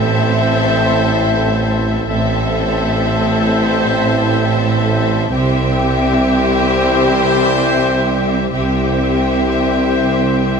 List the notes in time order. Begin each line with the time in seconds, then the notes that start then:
Already playing: A1 A2 E3 A3 C4 E4 A4 C5 E5
2.08 A1 A2 E3 A3 C4 E4 A4 C5 E5
5.30 C2 C3 E3 G3 C4 E4 G4 C5 E5 G5
8.53 C2 C3 E3 G3 C4 E4 G4 C5 E5 G5